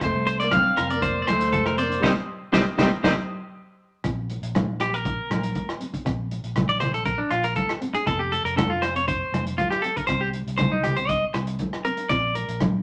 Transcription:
0.01 F1 C4 C5, kick, cross-stick, closed hi-hat, muted conga
0.05 A3
0.14 C2
0.27 C5, closed hi-hat
0.40 D5, closed hi-hat
0.44 A#3
0.51 C4 D4 F5, kick, cross-stick, closed hi-hat, high conga
0.77 F1 A#4, cross-stick, closed hi-hat
0.90 C4 D5, closed hi-hat
0.96 A#3
1.01 D4 C5, kick, closed hi-hat, muted conga
1.22 A#3 D5
1.27 D2 C5, cross-stick, closed hi-hat, high conga
1.32 A3
1.41 closed hi-hat
1.52 F1 A4, kick, closed hi-hat, high conga
1.66 A#4, cross-stick
1.77 C4 C5 D5, closed hi-hat, muted conga
1.82 A#3
1.89 D4, closed hi-hat
2.00 C2 G3 C4 D#4 G4 C5 D#5, kick, snare, high conga
2.06 C4
2.52 C2 G3 C4 D#4 G4 C5 D#5, kick, snare, high conga
2.58 C4
2.77 C2 G3 C4 D#4 G4 C5, kick, snare, high conga
2.81 C4 D#5
3.03 C2 G3 C4 D#4 G4 C5 D#5, kick, snare, high conga
3.08 C4
4.04 A#1 C4, kick, cross-stick, closed hi-hat, muted conga
4.30 closed hi-hat, muted conga
4.42 A#1, closed hi-hat
4.55 D4, kick, cross-stick, closed hi-hat, high conga
4.80 G4, cross-stick, closed hi-hat
4.93 A#3 A#4, closed hi-hat
5.05 D4, kick, closed hi-hat, muted conga
5.30 A#1, cross-stick, closed hi-hat, high conga
5.43 closed hi-hat
5.55 kick, closed hi-hat, high conga
5.69 cross-stick
5.80 C4, closed hi-hat, muted conga
5.93 D4, kick, closed hi-hat
6.05 A#1 C4, kick, cross-stick, closed hi-hat, muted conga
6.31 closed hi-hat, muted conga
6.44 A#1, closed hi-hat
6.56 D4, kick, cross-stick, closed hi-hat, high conga, low conga
6.69 D5
6.80 C5, cross-stick, closed hi-hat, low conga
6.94 A#3 A4, closed hi-hat
7.05 A#4, muted nylon-string guitar stroke, kick, closed hi-hat, muted conga
7.18 D4
7.31 A#1 F4, cross-stick, closed hi-hat
7.44 A#4, closed hi-hat
7.56 A4, kick, closed hi-hat, high conga
7.69 cross-stick
7.81 C4, closed hi-hat, muted conga
7.94 D4 G#4, closed hi-hat
8.06 F1 C4 A4, kick, cross-stick, closed hi-hat, muted conga
8.19 G4
8.32 A4, closed hi-hat, muted conga
8.44 F1 A#4, closed hi-hat
8.56 D4 A4, kick, cross-stick, closed hi-hat, high conga
8.70 F4
8.82 C5, cross-stick, closed hi-hat
8.95 C4 C#5, closed hi-hat
9.07 D4 C5, kick, closed hi-hat, muted conga
9.32 F1, cross-stick, closed hi-hat, high conga
9.47 closed hi-hat
9.58 F4, kick, closed hi-hat, high conga
9.70 G4, cross-stick
9.82 C4 A4, closed hi-hat
9.86 muted conga
9.96 D4 A#4, kick, closed hi-hat
10.07 C2 C4 C5, kick, cross-stick, closed hi-hat
10.12 muted conga
10.21 G4
10.33 closed hi-hat, muted conga
10.47 C2, closed hi-hat
10.58 D4 C5, kick, cross-stick, closed hi-hat, high conga, low conga
10.72 D#4
10.83 G4, cross-stick, closed hi-hat, low conga
10.96 C4 C5, closed hi-hat
11.09 D4 D#5, kick, closed hi-hat, muted conga
11.34 C2, muted clean electric guitar stroke, cross-stick, closed hi-hat
11.47 closed hi-hat
11.59 kick, closed hi-hat, high conga
11.73 cross-stick
11.85 C4 A#4, closed hi-hat, muted conga
11.97 D4, closed hi-hat
12.09 A#1 C4 D5, kick, cross-stick, closed hi-hat, muted conga
12.35 A#4, closed hi-hat, muted conga
12.48 A#1, closed hi-hat
12.60 D4, kick, cross-stick, closed hi-hat, high conga

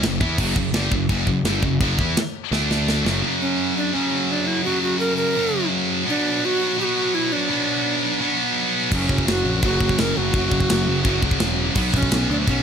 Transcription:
0.03 F#1 F#2 C#3, snare, china
0.21 E2 E3 B3 E4, kick
0.38 F#1 F#2 C#3 F#3, kick, crash, china
0.56 F#1 F#2 C#3, kick
0.73 G1 G2 D3 G3, snare, china
0.92 F#1 F#2 C#3, kick
1.09 F#1 F#2 C#3 F#3, kick, china
1.27 F#1 F#2 C#3, kick
1.44 G1 G2 D3 G3, snare, china
1.62 F#1 F#2 C#3, kick
1.80 F#1 F#2 C#3 F#3, kick, china
1.99 E2 E3 B3 E4, kick
2.17 snare, china
2.51 D2 D3 A3 D4, snare
2.71 snare
2.88 snare
3.05 F#1 F#2 C#3 F#3, snare
3.22 F#2 C#3 F#3
3.41 C#4
3.77 D4
3.94 F#2 C#3 F#3 C#4
4.31 D4
4.47 E4
4.64 F#2 C#3 F#3 F#4
4.82 F#4
4.99 A#4
5.17 A#4
5.36 F#2 C#3 F#3
6.05 B2 F#3 B3 D4
6.45 F#4
6.78 B2 F#3 B3 G4
6.84 F#4
7.15 E4
7.32 D4
7.49 B2 F#3 B3
8.20 B2 F#3 B3
8.92 F#1 F#2 C#3 F#3 C#4, kick, crash, china
9.09 F#1, kick
9.18 kick
9.27 F#1 F#4, snare, china
9.45 A#1
9.63 F#1 F#2 C#3 F#3 F#4, kick, china
9.81 F#1, kick
9.89 kick
9.98 F#1 A#4, snare, china
10.17 F#1 F#4
10.32 F#1 F#2 C#3 F#3, kick, china
10.51 F#1, kick
10.60 kick
10.69 F#1, snare, china
10.87 F#1
11.04 F#1 F#2 C#3 F#3, kick, china
11.22 C#2, kick
11.31 kick
11.40 E1, snare, china
11.75 B1 B2 F#3 B3, kick, crash, china
11.94 B1 C#4, kick
12.03 kick
12.11 B1, snare, china
12.29 D2 D4
12.47 B1 B2 F#3 B3 C#4, kick, china

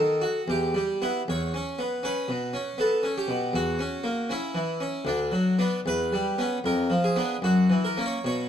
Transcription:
Already playing: D#3 A4
0.21 F#4
0.48 E2 G4
0.74 G3
1.02 B3 E4
1.28 E2 C#5
1.54 C#4
1.79 B3
2.03 C#4 B4
2.28 B2
2.53 C#4
2.78 B3 A4
3.03 C#4
3.18 G4
3.28 B2
3.53 E2 F#4
3.79 C#4
4.04 A#3
4.29 C#4 E4
4.55 E3
4.80 C#4
5.05 D2 D4
5.32 F#3
5.59 B3 D4
5.86 E2 B4
6.13 G3
6.38 B3 C#4
6.64 F2 A#4
6.90 F3
7.04 G#4
7.16 B3 D4
7.42 F#2 F#4
7.70 E3
7.85 A#4
7.97 A#3 C#4
8.06 C#5
8.24 B2 C#5

